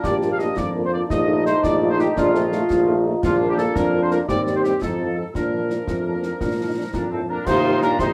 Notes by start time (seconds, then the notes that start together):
Already playing: A#3 D4
0.03 A#1 G4 D5, concert bass drum, snare
0.22 A#3 D4 F4, snare
0.31 F5
0.39 A#3 D4 F4 D#5, snare
0.57 F2 F4 D5, concert bass drum, snare
0.76 A#3 D4 F4
0.85 C5
0.93 A#3 D4 F4 D5
1.09 A#1 A3 D#4 D#5, concert bass drum, snare
1.28 A3 D#4 F4
1.46 A3 D#4 F4 C5, snare
1.63 A#1 D5, concert bass drum, snare
1.82 A3 D#4 F4
1.90 C5
1.99 A3 D#4 F4 G4, snare
2.17 A#1 D4 F4, concert bass drum, snare
2.34 A3 C4 D#4 F4, snare
2.52 A3 D#4 F4, snare
2.70 A#1, concert bass drum, snare
2.87 A3 D#4 F4
3.06 A3 D#4 F4
3.23 A#1 A#3 D4 F4, concert bass drum, snare, crash
3.41 A#3 D4 F4
3.49 G4
3.58 A#3 D4 F4 A4, snare
3.75 F2 D4 A#4, concert bass drum, snare
3.93 A#3 D4 F4
4.02 C5
4.11 A#3 D4 F4 A#4, snare
4.29 D#2 G3 C4 G4 D5, concert bass drum, snare
4.47 G3 C4 D#4, snare
4.55 C5
4.63 G3 C4 D#4 G4, snare
4.81 F2 F3 D#4 F4 A4, concert bass drum, snare
5.00 F3 C4 D#4
5.17 F3 C4 D#4 A4
5.34 A#2 F3 D4 A#4, concert bass drum, snare
5.53 F3 A#3 D4
5.70 F3 A#3 D4, snare
5.87 F2 A3, concert bass drum, snare
6.07 F3 A#3 D4
6.16 A#3
6.23 F3 A#3 C4 D4, snare
6.40 A#2 D4, concert bass drum, snare
6.60 F3 A#3 D4
6.68 D#4
6.77 F3 A#3 D4
6.93 F2 A#2 D4 A#4 A#5, concert bass drum, snare
7.11 A2 F3 A#3 C4 D4 A4 A5
7.28 A#2 F3 A#3 D4 A#4 A#5
7.45 D#2 C3 D#4 F4 C5 C6, concert bass drum, snare, crash
7.65 G3 A#3 D#4
7.82 A#2 G3 A#3 D4 D#4 A#4 A#5, snare
7.99 A#1 C3 D#4 C5 C6, concert bass drum, snare